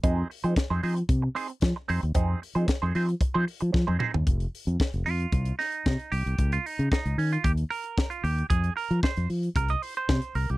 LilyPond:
<<
  \new Staff \with { instrumentName = "Clean electric guitar" } { \time 4/4 \key f \minor \tempo 4 = 113 <c' ees' aes' c''>8 r16 <c' ees' aes' c''>16 r16 <c' ees' aes' c''>16 <c' ees' aes' c''>16 r8. <c' ees' aes' c''>16 r8. <c' ees' aes' c''>16 r16 | <c' ees' aes' c''>8 r16 <c' ees' aes' c''>16 r16 <c' ees' aes' c''>16 <c' ees' aes' c''>16 r8 <c' ees' aes' c''>16 r8. <c' ees' aes' c''>16 <c' ees' aes' c''>16 r16 | r4. f'4 ees'4 g'8~ | g'16 f'16 ees'8 ees'8 des'16 f'16 g'8 bes'8. f'16 g'8 |
aes'8 bes'8 c''8 r8 bes'16 ees''16 c''16 c''8. bes'16 g'16 | }
  \new Staff \with { instrumentName = "Fingered electric bass" } { \clef bass \time 4/4 \key f \minor f,8 r16 f16 r16 f,16 f8 c8 r8 f16 r16 f,16 ees,16 | f,8 r16 f16 r16 f,16 f8 r16 f16 r16 f16 f16 f,16 r16 ees,16 | f,,8 r16 f,16 r16 f,,16 f,8 c,8 r8 c16 r16 c,16 c,16 | des,8 r16 des16 r16 des,16 ees8 ees,8 r4 ees,8 |
f,8 r16 f16 r16 f,16 f8 c,8 r8 c16 r16 c,16 c,16 | }
  \new DrumStaff \with { instrumentName = "Drums" } \drummode { \time 4/4 <hh bd>8 hho16 hh16 <hh bd sn>8 hho16 hh16 <hh bd>8 hho16 hh16 <hh bd sn>8 hho16 hh16 | <hh bd>8 hho16 hh16 <hh bd sn>8 hho16 hh16 <hh bd>8 hho16 hh16 <bd sn>16 tommh16 toml16 tomfh16 | <hh bd>16 hh16 hho16 hh16 <bd sn>16 hh16 hho16 hh16 <hh bd>16 hh16 <hho sn>16 hh16 <bd sn>16 hh16 hho16 hh16 | <hh bd>16 hh16 hho16 hh16 <bd sn>16 hh16 hho16 hh16 <hh bd>16 hh16 hho16 hh16 <bd sn>16 hh16 hho16 hh16 |
<hh bd>16 hh16 hho16 hh16 <bd sn>16 hh16 hho16 hh16 <hh bd>16 hh16 hho16 hh16 <bd sn>16 hh16 hho16 hh16 | }
>>